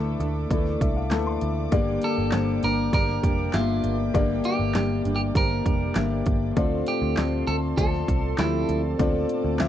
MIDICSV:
0, 0, Header, 1, 7, 480
1, 0, Start_track
1, 0, Tempo, 606183
1, 1362, Time_signature, 4, 2, 24, 8
1, 7667, End_track
2, 0, Start_track
2, 0, Title_t, "String section"
2, 0, Program_c, 0, 48
2, 0, Note_on_c, 0, 69, 65
2, 0, Note_on_c, 0, 74, 63
2, 0, Note_on_c, 0, 76, 63
2, 0, Note_on_c, 0, 86, 76
2, 1330, Note_off_c, 0, 69, 0
2, 1331, Note_off_c, 0, 76, 0
2, 1366, Note_on_c, 0, 58, 77
2, 1367, Note_on_c, 0, 79, 68
2, 5171, Note_off_c, 0, 86, 0
2, 5172, Note_off_c, 0, 58, 0
2, 5172, Note_off_c, 0, 79, 0
2, 5201, Note_on_c, 0, 81, 57
2, 5202, Note_on_c, 0, 84, 71
2, 5203, Note_on_c, 0, 69, 66
2, 7102, Note_off_c, 0, 84, 0
2, 7120, Note_on_c, 0, 86, 74
2, 7667, Note_off_c, 0, 69, 0
2, 7667, Note_off_c, 0, 74, 0
2, 7667, Note_off_c, 0, 81, 0
2, 7667, Note_off_c, 0, 86, 0
2, 7667, End_track
3, 0, Start_track
3, 0, Title_t, "Clean electric guitar"
3, 0, Program_c, 1, 27
3, 1617, Note_on_c, 1, 69, 89
3, 2090, Note_off_c, 1, 69, 0
3, 2093, Note_on_c, 1, 70, 97
3, 2321, Note_off_c, 1, 70, 0
3, 2331, Note_on_c, 1, 70, 110
3, 2807, Note_on_c, 1, 65, 70
3, 2820, Note_off_c, 1, 70, 0
3, 3139, Note_off_c, 1, 65, 0
3, 3525, Note_on_c, 1, 67, 81
3, 3971, Note_off_c, 1, 67, 0
3, 4083, Note_on_c, 1, 67, 75
3, 4126, Note_off_c, 1, 67, 0
3, 4252, Note_on_c, 1, 70, 96
3, 4935, Note_off_c, 1, 70, 0
3, 5448, Note_on_c, 1, 67, 79
3, 5915, Note_off_c, 1, 67, 0
3, 5918, Note_on_c, 1, 69, 90
3, 5983, Note_off_c, 1, 69, 0
3, 6156, Note_on_c, 1, 69, 97
3, 6640, Note_off_c, 1, 69, 0
3, 6643, Note_on_c, 1, 64, 72
3, 6977, Note_off_c, 1, 64, 0
3, 7667, End_track
4, 0, Start_track
4, 0, Title_t, "Upright piano"
4, 0, Program_c, 2, 0
4, 0, Control_c, 2, 64, 127
4, 0, Note_on_c, 2, 45, 72
4, 0, Note_on_c, 2, 57, 75
4, 0, Note_on_c, 2, 64, 67
4, 0, Note_on_c, 2, 69, 98
4, 0, Note_on_c, 2, 74, 127
4, 130, Note_off_c, 2, 45, 0
4, 273, Note_off_c, 2, 57, 0
4, 275, Note_off_c, 2, 64, 0
4, 276, Note_off_c, 2, 69, 0
4, 402, Note_on_c, 2, 64, 70
4, 403, Note_on_c, 2, 57, 76
4, 406, Note_off_c, 2, 74, 0
4, 406, Note_on_c, 2, 74, 90
4, 645, Note_on_c, 2, 76, 70
4, 755, Note_off_c, 2, 76, 0
4, 756, Note_off_c, 2, 57, 0
4, 756, Note_off_c, 2, 64, 0
4, 758, Note_off_c, 2, 74, 0
4, 765, Note_on_c, 2, 77, 69
4, 875, Note_off_c, 2, 77, 0
4, 877, Note_on_c, 2, 57, 75
4, 878, Note_on_c, 2, 64, 71
4, 880, Note_on_c, 2, 81, 69
4, 883, Note_on_c, 2, 69, 85
4, 992, Note_off_c, 2, 81, 0
4, 1002, Note_on_c, 2, 84, 63
4, 1233, Note_off_c, 2, 57, 0
4, 1233, Note_off_c, 2, 64, 0
4, 1236, Note_off_c, 2, 69, 0
4, 1337, Note_off_c, 2, 84, 0
4, 1358, Note_on_c, 2, 58, 117
4, 1361, Note_on_c, 2, 43, 73
4, 1361, Note_on_c, 2, 67, 97
4, 1362, Note_on_c, 2, 50, 84
4, 1362, Note_on_c, 2, 74, 127
4, 1373, Control_c, 2, 64, 0
4, 1498, Control_c, 2, 64, 127
4, 1714, Note_off_c, 2, 58, 0
4, 1715, Note_off_c, 2, 67, 0
4, 1716, Note_off_c, 2, 74, 0
4, 1837, Note_on_c, 2, 58, 71
4, 1838, Note_on_c, 2, 67, 67
4, 1840, Note_on_c, 2, 72, 77
4, 2050, Note_off_c, 2, 43, 0
4, 2050, Note_off_c, 2, 50, 0
4, 2193, Note_off_c, 2, 58, 0
4, 2194, Note_off_c, 2, 67, 0
4, 2195, Note_off_c, 2, 72, 0
4, 2320, Note_on_c, 2, 58, 72
4, 2322, Note_on_c, 2, 67, 61
4, 2324, Note_on_c, 2, 74, 75
4, 2674, Note_off_c, 2, 58, 0
4, 2675, Note_off_c, 2, 67, 0
4, 2676, Note_off_c, 2, 74, 0
4, 2798, Note_on_c, 2, 58, 71
4, 2802, Note_on_c, 2, 67, 62
4, 2802, Note_on_c, 2, 76, 85
4, 3154, Note_off_c, 2, 58, 0
4, 3155, Note_off_c, 2, 67, 0
4, 3156, Note_off_c, 2, 76, 0
4, 3278, Note_on_c, 2, 50, 77
4, 3278, Note_on_c, 2, 58, 117
4, 3279, Note_on_c, 2, 43, 75
4, 3279, Note_on_c, 2, 67, 108
4, 3281, Note_on_c, 2, 74, 127
4, 3634, Note_off_c, 2, 58, 0
4, 3634, Note_off_c, 2, 67, 0
4, 3635, Note_off_c, 2, 74, 0
4, 3753, Note_on_c, 2, 58, 74
4, 3756, Note_on_c, 2, 67, 66
4, 3757, Note_on_c, 2, 74, 80
4, 3968, Note_off_c, 2, 50, 0
4, 3969, Note_off_c, 2, 43, 0
4, 4111, Note_off_c, 2, 58, 0
4, 4112, Note_off_c, 2, 67, 0
4, 4113, Note_off_c, 2, 74, 0
4, 4233, Note_on_c, 2, 58, 67
4, 4237, Note_on_c, 2, 67, 61
4, 4238, Note_on_c, 2, 72, 72
4, 4591, Note_off_c, 2, 58, 0
4, 4593, Note_off_c, 2, 67, 0
4, 4594, Note_off_c, 2, 72, 0
4, 4718, Note_on_c, 2, 58, 67
4, 4720, Note_on_c, 2, 67, 66
4, 4722, Note_on_c, 2, 76, 70
4, 5073, Note_off_c, 2, 58, 0
4, 5074, Note_off_c, 2, 67, 0
4, 5075, Note_off_c, 2, 76, 0
4, 5198, Note_on_c, 2, 45, 76
4, 5198, Note_on_c, 2, 60, 106
4, 5200, Note_on_c, 2, 65, 100
4, 5202, Note_on_c, 2, 74, 116
4, 5213, Control_c, 2, 64, 0
4, 5334, Control_c, 2, 64, 127
4, 5553, Note_off_c, 2, 60, 0
4, 5554, Note_off_c, 2, 65, 0
4, 5555, Note_off_c, 2, 74, 0
4, 5677, Note_on_c, 2, 60, 67
4, 5678, Note_on_c, 2, 65, 63
4, 5679, Note_on_c, 2, 74, 73
4, 5888, Note_off_c, 2, 45, 0
4, 6032, Note_off_c, 2, 60, 0
4, 6033, Note_off_c, 2, 65, 0
4, 6034, Note_off_c, 2, 74, 0
4, 6158, Note_on_c, 2, 60, 67
4, 6161, Note_on_c, 2, 65, 57
4, 6162, Note_on_c, 2, 74, 74
4, 6513, Note_off_c, 2, 60, 0
4, 6514, Note_off_c, 2, 65, 0
4, 6515, Note_off_c, 2, 74, 0
4, 6638, Note_on_c, 2, 60, 61
4, 6639, Note_on_c, 2, 53, 62
4, 6640, Note_on_c, 2, 67, 73
4, 6993, Note_off_c, 2, 53, 0
4, 6993, Note_off_c, 2, 60, 0
4, 6994, Note_off_c, 2, 67, 0
4, 7121, Note_on_c, 2, 60, 116
4, 7122, Note_on_c, 2, 45, 69
4, 7122, Note_on_c, 2, 65, 97
4, 7125, Note_on_c, 2, 74, 127
4, 7474, Note_off_c, 2, 60, 0
4, 7475, Note_off_c, 2, 65, 0
4, 7476, Note_off_c, 2, 74, 0
4, 7598, Note_on_c, 2, 60, 93
4, 7598, Note_on_c, 2, 65, 78
4, 7601, Note_on_c, 2, 76, 99
4, 7667, Note_off_c, 2, 45, 0
4, 7667, Note_off_c, 2, 60, 0
4, 7667, Note_off_c, 2, 65, 0
4, 7667, Note_off_c, 2, 76, 0
4, 7667, End_track
5, 0, Start_track
5, 0, Title_t, "Steel-string acoustic guitar"
5, 0, Program_c, 3, 25
5, 0, Note_on_c, 3, 52, 57
5, 0, Note_on_c, 3, 57, 60
5, 0, Note_on_c, 3, 62, 66
5, 0, Note_on_c, 3, 69, 69
5, 146, Note_off_c, 3, 69, 0
5, 155, Note_on_c, 3, 69, 54
5, 158, Note_off_c, 3, 52, 0
5, 161, Note_off_c, 3, 62, 0
5, 163, Note_off_c, 3, 57, 0
5, 170, Note_on_c, 3, 62, 50
5, 182, Note_on_c, 3, 57, 48
5, 394, Note_on_c, 3, 52, 71
5, 396, Note_off_c, 3, 57, 0
5, 399, Note_off_c, 3, 69, 0
5, 404, Note_off_c, 3, 62, 0
5, 405, Note_on_c, 3, 57, 72
5, 413, Note_on_c, 3, 62, 70
5, 422, Note_on_c, 3, 69, 68
5, 627, Note_off_c, 3, 69, 0
5, 637, Note_on_c, 3, 69, 50
5, 638, Note_off_c, 3, 52, 0
5, 643, Note_off_c, 3, 62, 0
5, 644, Note_off_c, 3, 57, 0
5, 652, Note_on_c, 3, 62, 47
5, 664, Note_on_c, 3, 57, 43
5, 878, Note_off_c, 3, 57, 0
5, 878, Note_on_c, 3, 52, 63
5, 879, Note_off_c, 3, 69, 0
5, 887, Note_off_c, 3, 62, 0
5, 887, Note_on_c, 3, 57, 78
5, 896, Note_on_c, 3, 62, 67
5, 904, Note_on_c, 3, 69, 71
5, 1358, Note_on_c, 3, 43, 78
5, 1360, Note_off_c, 3, 52, 0
5, 1363, Note_on_c, 3, 50, 88
5, 1365, Note_off_c, 3, 57, 0
5, 1368, Note_on_c, 3, 55, 84
5, 1371, Note_off_c, 3, 62, 0
5, 1371, Note_on_c, 3, 58, 89
5, 1373, Note_off_c, 3, 69, 0
5, 1375, Note_on_c, 3, 62, 91
5, 1378, Note_on_c, 3, 67, 98
5, 1825, Note_off_c, 3, 55, 0
5, 1835, Note_on_c, 3, 55, 67
5, 1836, Note_off_c, 3, 58, 0
5, 1840, Note_off_c, 3, 43, 0
5, 1846, Note_on_c, 3, 58, 77
5, 1850, Note_off_c, 3, 67, 0
5, 1852, Note_off_c, 3, 62, 0
5, 1855, Note_on_c, 3, 62, 72
5, 1862, Note_on_c, 3, 67, 76
5, 2065, Note_off_c, 3, 67, 0
5, 2075, Note_on_c, 3, 67, 55
5, 2077, Note_off_c, 3, 62, 0
5, 2078, Note_off_c, 3, 55, 0
5, 2084, Note_off_c, 3, 58, 0
5, 2086, Note_on_c, 3, 62, 60
5, 2094, Note_on_c, 3, 58, 47
5, 2103, Note_on_c, 3, 55, 43
5, 2305, Note_off_c, 3, 55, 0
5, 2315, Note_on_c, 3, 55, 63
5, 2316, Note_off_c, 3, 58, 0
5, 2318, Note_off_c, 3, 67, 0
5, 2324, Note_off_c, 3, 62, 0
5, 2325, Note_on_c, 3, 58, 72
5, 2335, Note_on_c, 3, 62, 69
5, 2341, Note_on_c, 3, 67, 74
5, 2546, Note_off_c, 3, 67, 0
5, 2556, Note_off_c, 3, 62, 0
5, 2556, Note_on_c, 3, 67, 56
5, 2558, Note_off_c, 3, 55, 0
5, 2564, Note_off_c, 3, 58, 0
5, 2565, Note_on_c, 3, 62, 49
5, 2574, Note_on_c, 3, 58, 53
5, 2582, Note_on_c, 3, 55, 44
5, 2784, Note_off_c, 3, 55, 0
5, 2793, Note_off_c, 3, 58, 0
5, 2794, Note_on_c, 3, 55, 62
5, 2799, Note_off_c, 3, 67, 0
5, 2803, Note_on_c, 3, 58, 71
5, 2804, Note_off_c, 3, 62, 0
5, 2813, Note_on_c, 3, 62, 82
5, 2820, Note_on_c, 3, 67, 75
5, 3277, Note_on_c, 3, 43, 76
5, 3278, Note_off_c, 3, 50, 0
5, 3278, Note_off_c, 3, 55, 0
5, 3279, Note_off_c, 3, 58, 0
5, 3281, Note_on_c, 3, 50, 87
5, 3286, Note_off_c, 3, 67, 0
5, 3286, Note_on_c, 3, 55, 81
5, 3289, Note_on_c, 3, 58, 93
5, 3290, Note_off_c, 3, 62, 0
5, 3293, Note_on_c, 3, 62, 91
5, 3296, Note_on_c, 3, 67, 99
5, 3743, Note_off_c, 3, 55, 0
5, 3752, Note_on_c, 3, 55, 62
5, 3753, Note_off_c, 3, 58, 0
5, 3759, Note_off_c, 3, 43, 0
5, 3763, Note_on_c, 3, 58, 68
5, 3768, Note_off_c, 3, 62, 0
5, 3769, Note_off_c, 3, 67, 0
5, 3771, Note_on_c, 3, 62, 72
5, 3780, Note_on_c, 3, 67, 70
5, 3982, Note_off_c, 3, 67, 0
5, 3992, Note_on_c, 3, 67, 55
5, 3993, Note_off_c, 3, 62, 0
5, 3997, Note_off_c, 3, 55, 0
5, 4002, Note_off_c, 3, 58, 0
5, 4003, Note_on_c, 3, 62, 54
5, 4011, Note_on_c, 3, 58, 51
5, 4018, Note_on_c, 3, 55, 44
5, 4222, Note_off_c, 3, 55, 0
5, 4232, Note_off_c, 3, 58, 0
5, 4232, Note_on_c, 3, 55, 66
5, 4237, Note_off_c, 3, 67, 0
5, 4242, Note_off_c, 3, 62, 0
5, 4242, Note_on_c, 3, 58, 69
5, 4251, Note_on_c, 3, 62, 72
5, 4258, Note_on_c, 3, 67, 75
5, 4461, Note_off_c, 3, 67, 0
5, 4470, Note_off_c, 3, 62, 0
5, 4470, Note_on_c, 3, 67, 53
5, 4477, Note_off_c, 3, 55, 0
5, 4479, Note_on_c, 3, 62, 50
5, 4480, Note_off_c, 3, 58, 0
5, 4489, Note_on_c, 3, 58, 50
5, 4496, Note_on_c, 3, 55, 44
5, 4703, Note_off_c, 3, 55, 0
5, 4712, Note_on_c, 3, 55, 63
5, 4713, Note_off_c, 3, 58, 0
5, 4716, Note_off_c, 3, 67, 0
5, 4720, Note_off_c, 3, 62, 0
5, 4722, Note_on_c, 3, 58, 72
5, 4731, Note_on_c, 3, 62, 65
5, 4739, Note_on_c, 3, 67, 68
5, 5191, Note_off_c, 3, 50, 0
5, 5194, Note_on_c, 3, 50, 86
5, 5196, Note_off_c, 3, 55, 0
5, 5199, Note_on_c, 3, 53, 82
5, 5201, Note_off_c, 3, 58, 0
5, 5204, Note_on_c, 3, 57, 84
5, 5205, Note_off_c, 3, 62, 0
5, 5208, Note_on_c, 3, 60, 86
5, 5210, Note_off_c, 3, 67, 0
5, 5213, Note_on_c, 3, 69, 96
5, 5664, Note_off_c, 3, 53, 0
5, 5672, Note_off_c, 3, 57, 0
5, 5673, Note_on_c, 3, 53, 66
5, 5682, Note_on_c, 3, 57, 63
5, 5687, Note_off_c, 3, 69, 0
5, 5688, Note_off_c, 3, 60, 0
5, 5691, Note_on_c, 3, 60, 61
5, 5699, Note_on_c, 3, 69, 67
5, 5715, Note_off_c, 3, 50, 0
5, 5900, Note_off_c, 3, 69, 0
5, 5909, Note_on_c, 3, 69, 53
5, 5916, Note_off_c, 3, 60, 0
5, 5917, Note_off_c, 3, 53, 0
5, 5921, Note_off_c, 3, 57, 0
5, 5925, Note_on_c, 3, 60, 51
5, 5937, Note_on_c, 3, 57, 47
5, 6151, Note_on_c, 3, 53, 66
5, 6152, Note_off_c, 3, 57, 0
5, 6155, Note_off_c, 3, 69, 0
5, 6161, Note_off_c, 3, 60, 0
5, 6161, Note_on_c, 3, 57, 67
5, 6170, Note_on_c, 3, 60, 68
5, 6178, Note_on_c, 3, 69, 76
5, 6380, Note_off_c, 3, 69, 0
5, 6389, Note_on_c, 3, 69, 53
5, 6395, Note_off_c, 3, 60, 0
5, 6396, Note_off_c, 3, 53, 0
5, 6401, Note_off_c, 3, 57, 0
5, 6404, Note_on_c, 3, 60, 46
5, 6417, Note_on_c, 3, 57, 44
5, 6631, Note_on_c, 3, 53, 60
5, 6632, Note_off_c, 3, 57, 0
5, 6635, Note_off_c, 3, 69, 0
5, 6640, Note_off_c, 3, 60, 0
5, 6641, Note_on_c, 3, 57, 63
5, 6650, Note_on_c, 3, 60, 69
5, 6657, Note_on_c, 3, 69, 72
5, 7111, Note_off_c, 3, 53, 0
5, 7114, Note_on_c, 3, 50, 86
5, 7116, Note_off_c, 3, 57, 0
5, 7120, Note_on_c, 3, 53, 90
5, 7123, Note_off_c, 3, 69, 0
5, 7125, Note_on_c, 3, 57, 86
5, 7126, Note_off_c, 3, 60, 0
5, 7129, Note_on_c, 3, 60, 85
5, 7132, Note_on_c, 3, 69, 100
5, 7582, Note_off_c, 3, 53, 0
5, 7591, Note_on_c, 3, 53, 61
5, 7592, Note_off_c, 3, 57, 0
5, 7601, Note_on_c, 3, 57, 65
5, 7606, Note_off_c, 3, 60, 0
5, 7606, Note_off_c, 3, 69, 0
5, 7610, Note_on_c, 3, 60, 62
5, 7618, Note_on_c, 3, 69, 74
5, 7633, Note_off_c, 3, 50, 0
5, 7667, Note_off_c, 3, 53, 0
5, 7667, Note_off_c, 3, 57, 0
5, 7667, Note_off_c, 3, 60, 0
5, 7667, Note_off_c, 3, 69, 0
5, 7667, End_track
6, 0, Start_track
6, 0, Title_t, "Picked electric bass"
6, 0, Program_c, 4, 34
6, 0, Note_on_c, 4, 38, 90
6, 118, Note_off_c, 4, 38, 0
6, 157, Note_on_c, 4, 38, 91
6, 356, Note_off_c, 4, 38, 0
6, 401, Note_on_c, 4, 38, 89
6, 598, Note_off_c, 4, 38, 0
6, 641, Note_on_c, 4, 36, 81
6, 885, Note_off_c, 4, 36, 0
6, 885, Note_on_c, 4, 38, 91
6, 1080, Note_off_c, 4, 38, 0
6, 1125, Note_on_c, 4, 38, 94
6, 1321, Note_off_c, 4, 38, 0
6, 1363, Note_on_c, 4, 31, 89
6, 1559, Note_off_c, 4, 31, 0
6, 1727, Note_on_c, 4, 31, 75
6, 1823, Note_off_c, 4, 31, 0
6, 1848, Note_on_c, 4, 31, 91
6, 2042, Note_off_c, 4, 31, 0
6, 2086, Note_on_c, 4, 31, 99
6, 2281, Note_off_c, 4, 31, 0
6, 2319, Note_on_c, 4, 31, 89
6, 2517, Note_off_c, 4, 31, 0
6, 2561, Note_on_c, 4, 29, 88
6, 2758, Note_off_c, 4, 29, 0
6, 2803, Note_on_c, 4, 31, 102
6, 2999, Note_off_c, 4, 31, 0
6, 3041, Note_on_c, 4, 31, 92
6, 3238, Note_off_c, 4, 31, 0
6, 3282, Note_on_c, 4, 31, 97
6, 3479, Note_off_c, 4, 31, 0
6, 3638, Note_on_c, 4, 31, 83
6, 3738, Note_off_c, 4, 31, 0
6, 3760, Note_on_c, 4, 31, 94
6, 3957, Note_off_c, 4, 31, 0
6, 4002, Note_on_c, 4, 31, 89
6, 4199, Note_off_c, 4, 31, 0
6, 4237, Note_on_c, 4, 31, 91
6, 4436, Note_off_c, 4, 31, 0
6, 4479, Note_on_c, 4, 29, 76
6, 4677, Note_off_c, 4, 29, 0
6, 4719, Note_on_c, 4, 31, 100
6, 4917, Note_off_c, 4, 31, 0
6, 4959, Note_on_c, 4, 31, 93
6, 5157, Note_off_c, 4, 31, 0
6, 5199, Note_on_c, 4, 38, 87
6, 5397, Note_off_c, 4, 38, 0
6, 5557, Note_on_c, 4, 38, 92
6, 5657, Note_off_c, 4, 38, 0
6, 5680, Note_on_c, 4, 38, 98
6, 5877, Note_off_c, 4, 38, 0
6, 5919, Note_on_c, 4, 38, 89
6, 6117, Note_off_c, 4, 38, 0
6, 6157, Note_on_c, 4, 38, 91
6, 6355, Note_off_c, 4, 38, 0
6, 6400, Note_on_c, 4, 36, 90
6, 6597, Note_off_c, 4, 36, 0
6, 6639, Note_on_c, 4, 38, 92
6, 6837, Note_off_c, 4, 38, 0
6, 6881, Note_on_c, 4, 38, 82
6, 7078, Note_off_c, 4, 38, 0
6, 7122, Note_on_c, 4, 38, 87
6, 7318, Note_off_c, 4, 38, 0
6, 7479, Note_on_c, 4, 38, 80
6, 7578, Note_off_c, 4, 38, 0
6, 7604, Note_on_c, 4, 38, 92
6, 7667, Note_off_c, 4, 38, 0
6, 7667, End_track
7, 0, Start_track
7, 0, Title_t, "Drums"
7, 162, Note_on_c, 9, 42, 66
7, 241, Note_off_c, 9, 42, 0
7, 400, Note_on_c, 9, 36, 93
7, 405, Note_on_c, 9, 42, 73
7, 480, Note_off_c, 9, 36, 0
7, 484, Note_off_c, 9, 42, 0
7, 522, Note_on_c, 9, 38, 33
7, 601, Note_off_c, 9, 38, 0
7, 642, Note_on_c, 9, 36, 91
7, 647, Note_on_c, 9, 42, 81
7, 722, Note_off_c, 9, 36, 0
7, 726, Note_off_c, 9, 42, 0
7, 878, Note_on_c, 9, 39, 77
7, 879, Note_on_c, 9, 42, 78
7, 882, Note_on_c, 9, 38, 99
7, 957, Note_off_c, 9, 39, 0
7, 959, Note_off_c, 9, 42, 0
7, 962, Note_off_c, 9, 38, 0
7, 1119, Note_on_c, 9, 42, 78
7, 1198, Note_off_c, 9, 42, 0
7, 1361, Note_on_c, 9, 42, 72
7, 1363, Note_on_c, 9, 36, 100
7, 1440, Note_off_c, 9, 42, 0
7, 1442, Note_off_c, 9, 36, 0
7, 1596, Note_on_c, 9, 42, 83
7, 1675, Note_off_c, 9, 42, 0
7, 1833, Note_on_c, 9, 39, 94
7, 1838, Note_on_c, 9, 38, 99
7, 1838, Note_on_c, 9, 42, 78
7, 1912, Note_off_c, 9, 39, 0
7, 1917, Note_off_c, 9, 38, 0
7, 1918, Note_off_c, 9, 42, 0
7, 2081, Note_on_c, 9, 42, 68
7, 2160, Note_off_c, 9, 42, 0
7, 2320, Note_on_c, 9, 36, 99
7, 2324, Note_on_c, 9, 42, 82
7, 2400, Note_off_c, 9, 36, 0
7, 2403, Note_off_c, 9, 42, 0
7, 2443, Note_on_c, 9, 38, 35
7, 2522, Note_off_c, 9, 38, 0
7, 2562, Note_on_c, 9, 36, 81
7, 2564, Note_on_c, 9, 42, 77
7, 2641, Note_off_c, 9, 36, 0
7, 2643, Note_off_c, 9, 42, 0
7, 2797, Note_on_c, 9, 39, 89
7, 2799, Note_on_c, 9, 42, 82
7, 2802, Note_on_c, 9, 38, 105
7, 2876, Note_off_c, 9, 39, 0
7, 2878, Note_off_c, 9, 42, 0
7, 2881, Note_off_c, 9, 38, 0
7, 3039, Note_on_c, 9, 42, 72
7, 3118, Note_off_c, 9, 42, 0
7, 3283, Note_on_c, 9, 36, 106
7, 3284, Note_on_c, 9, 42, 76
7, 3362, Note_off_c, 9, 36, 0
7, 3363, Note_off_c, 9, 42, 0
7, 3518, Note_on_c, 9, 42, 74
7, 3597, Note_off_c, 9, 42, 0
7, 3756, Note_on_c, 9, 39, 85
7, 3761, Note_on_c, 9, 38, 104
7, 3762, Note_on_c, 9, 42, 83
7, 3836, Note_off_c, 9, 39, 0
7, 3840, Note_off_c, 9, 38, 0
7, 3841, Note_off_c, 9, 42, 0
7, 4001, Note_on_c, 9, 42, 71
7, 4080, Note_off_c, 9, 42, 0
7, 4238, Note_on_c, 9, 36, 105
7, 4243, Note_on_c, 9, 42, 79
7, 4317, Note_off_c, 9, 36, 0
7, 4322, Note_off_c, 9, 42, 0
7, 4479, Note_on_c, 9, 36, 88
7, 4483, Note_on_c, 9, 42, 80
7, 4558, Note_off_c, 9, 36, 0
7, 4562, Note_off_c, 9, 42, 0
7, 4713, Note_on_c, 9, 39, 90
7, 4715, Note_on_c, 9, 42, 86
7, 4718, Note_on_c, 9, 38, 103
7, 4792, Note_off_c, 9, 39, 0
7, 4794, Note_off_c, 9, 42, 0
7, 4797, Note_off_c, 9, 38, 0
7, 4955, Note_on_c, 9, 42, 75
7, 4961, Note_on_c, 9, 36, 98
7, 5034, Note_off_c, 9, 42, 0
7, 5040, Note_off_c, 9, 36, 0
7, 5199, Note_on_c, 9, 42, 75
7, 5200, Note_on_c, 9, 36, 107
7, 5278, Note_off_c, 9, 42, 0
7, 5279, Note_off_c, 9, 36, 0
7, 5436, Note_on_c, 9, 42, 77
7, 5515, Note_off_c, 9, 42, 0
7, 5676, Note_on_c, 9, 39, 83
7, 5680, Note_on_c, 9, 38, 112
7, 5681, Note_on_c, 9, 42, 81
7, 5755, Note_off_c, 9, 39, 0
7, 5760, Note_off_c, 9, 38, 0
7, 5760, Note_off_c, 9, 42, 0
7, 5921, Note_on_c, 9, 42, 65
7, 6000, Note_off_c, 9, 42, 0
7, 6158, Note_on_c, 9, 36, 89
7, 6162, Note_on_c, 9, 42, 75
7, 6237, Note_off_c, 9, 36, 0
7, 6241, Note_off_c, 9, 42, 0
7, 6282, Note_on_c, 9, 38, 36
7, 6361, Note_off_c, 9, 38, 0
7, 6400, Note_on_c, 9, 36, 84
7, 6404, Note_on_c, 9, 42, 80
7, 6479, Note_off_c, 9, 36, 0
7, 6483, Note_off_c, 9, 42, 0
7, 6636, Note_on_c, 9, 39, 94
7, 6638, Note_on_c, 9, 42, 86
7, 6641, Note_on_c, 9, 38, 109
7, 6715, Note_off_c, 9, 39, 0
7, 6717, Note_off_c, 9, 42, 0
7, 6720, Note_off_c, 9, 38, 0
7, 6880, Note_on_c, 9, 42, 72
7, 6959, Note_off_c, 9, 42, 0
7, 7122, Note_on_c, 9, 36, 96
7, 7123, Note_on_c, 9, 42, 75
7, 7201, Note_off_c, 9, 36, 0
7, 7202, Note_off_c, 9, 42, 0
7, 7359, Note_on_c, 9, 42, 81
7, 7438, Note_off_c, 9, 42, 0
7, 7595, Note_on_c, 9, 39, 89
7, 7600, Note_on_c, 9, 38, 110
7, 7601, Note_on_c, 9, 42, 83
7, 7667, Note_off_c, 9, 38, 0
7, 7667, Note_off_c, 9, 39, 0
7, 7667, Note_off_c, 9, 42, 0
7, 7667, End_track
0, 0, End_of_file